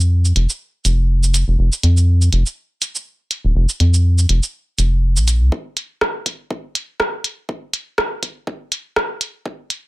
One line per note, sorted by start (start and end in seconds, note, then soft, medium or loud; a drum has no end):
0.00 0.32 F2 medium
0.00 cabasa soft
0.25 cabasa soft
0.36 0.47 F1 medium
0.36 closed hi-hat medium
0.49 cabasa soft
0.85 1.44 F1 medium
0.85 closed hi-hat medium
0.85 cabasa soft
1.23 cabasa soft
1.34 closed hi-hat medium
1.34 cabasa soft
1.48 1.57 F1 medium
1.59 1.70 F1 medium
1.72 cabasa soft
1.83 2.29 F2 medium
1.83 closed hi-hat medium
1.97 cabasa soft
2.22 cabasa soft
2.33 2.43 F1 medium
2.33 closed hi-hat medium
2.46 cabasa soft
2.82 closed hi-hat medium
2.82 cabasa soft
2.95 cabasa soft
3.31 closed hi-hat medium
3.44 3.53 D#1 medium
3.55 3.66 F1 medium
3.69 cabasa soft
3.80 4.26 F2 medium
3.80 closed hi-hat medium
3.94 cabasa soft
4.18 cabasa soft
4.29 4.40 F1 medium
4.29 closed hi-hat medium
4.43 cabasa soft
4.78 5.18 F1 medium
4.78 closed hi-hat medium
4.78 cabasa soft
5.17 5.43 A#1 medium
5.17 cabasa soft
5.28 closed hi-hat medium
5.28 cabasa soft
5.41 5.50 C2 loud
5.52 kick loud
5.77 closed hi-hat medium
6.01 kick loud
6.01 cross-stick medium
6.26 kick medium
6.26 closed hi-hat medium
6.50 kick loud
6.75 closed hi-hat medium
7.00 kick loud
7.00 cross-stick medium
7.24 closed hi-hat medium
7.49 kick loud
7.74 closed hi-hat medium
7.98 kick loud
7.98 cross-stick medium
8.23 kick medium
8.23 closed hi-hat medium
8.47 kick loud
8.72 closed hi-hat medium
8.96 kick loud
8.96 cross-stick medium
9.21 closed hi-hat medium
9.46 kick loud
9.70 closed hi-hat medium